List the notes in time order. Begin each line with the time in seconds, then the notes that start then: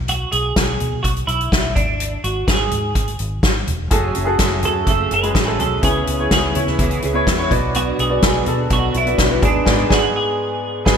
Already playing: B1
0.08 F#4, closed hi-hat
0.32 B1 G#4, closed hi-hat
0.56 B1, kick, snare, closed hi-hat
0.80 B2, closed hi-hat, floor tom
0.93 floor tom
1.03 B1 F#4, kick, closed hi-hat
1.17 closed hi-hat
1.27 B1 E4, closed hi-hat
1.41 closed hi-hat
1.52 B1, kick, snare, closed hi-hat
1.75 G#1 D4, kick, closed hi-hat, floor tom
2.00 closed hi-hat
2.24 G#1 F#4, closed hi-hat
2.48 G#1 G#4, kick, snare, closed hi-hat
2.71 G#2, closed hi-hat, floor tom
2.95 G#1, kick, closed hi-hat
3.08 closed hi-hat
3.19 G#1, closed hi-hat
3.43 G#1, kick, snare, closed hi-hat
3.67 E1, closed hi-hat, floor tom
3.91 F#1 F#2 C#3 F#3 A3 C#4 F#4 G#4 A4, kick, closed hi-hat
4.15 F#1 F#3 A3 C#4 G#4, closed hi-hat
4.25 F#4 G#4 A4
4.38 F#1 F#3 A3 C#4 G#4, kick, snare, closed hi-hat
4.63 F#2 F#3 A3 C#4 F#4 G#4 A4, closed hi-hat, floor tom
4.87 F#1 F#2 C#3 F#3 A3 C#4 G#4 A4, kick, closed hi-hat
5.11 F#1 F#3 A3 C#4 G#4 B4, closed hi-hat
5.22 G#3 F#4 G#4, closed hi-hat
5.34 A1 F#3 A3 C#4 G#4, kick, snare, closed hi-hat
5.45 F#4 G#4 A4
5.58 B1 F#3 A3 C#4 G#4 A4, closed hi-hat, floor tom
5.82 C#2 C#3 E3 B3 C#4 E4 G#4 C#5, kick, closed hi-hat
6.06 C#2 B3 C#4 G#4, closed hi-hat
6.18 B3 E4 C#5
6.31 C#2 E3 B3 C#4 G#4, kick, snare, closed hi-hat
6.54 C#3 B3 C#4 E4 G#4 C#5, closed hi-hat, floor tom
6.67 snare, floor tom
6.78 C#2 C#3 E3 B3 C#4 G#4, kick, closed hi-hat
6.91 closed hi-hat
7.02 C#2 B3 C#4 G#4, closed hi-hat
7.13 B3 E4 C#5
7.26 E2 E3 B3 C#4 G#4, kick, snare, closed hi-hat
7.38 B3 E4 C#5
7.50 B1 B2 B3 D4 F#4 D5, kick, closed hi-hat, floor tom
7.74 B2 F#3 B3 D4 F#4, closed hi-hat
7.99 B1 B3 D4 F#4 G#4, closed hi-hat
8.09 B3 F#4 D5
8.22 B1 F#3 B3 D4 F#4, kick, snare, closed hi-hat
8.46 B2 B3 D4 F#4 A4, closed hi-hat, floor tom
8.70 B1 B2 F#3 B3 D4 F#4, kick, closed hi-hat
8.94 B1 B3 D4 E4 F#4, closed hi-hat
9.06 B3 F#4 D5, closed hi-hat
9.18 B1 F#3 B3 D4 F#4, kick, snare, closed hi-hat
9.29 B3 F#4 B4
9.41 G#1 G#2 B3 D4 G#4 D5, kick, closed hi-hat, floor tom
9.65 G#1 G#2 G#3 B3 D4 G#4 D5, kick, snare, crash
9.89 G#1 B3 D4 G#4 D5, kick, snare
9.94 F#4
10.16 G#4
10.85 G#1 B3 D4 G#4, kick, snare, crash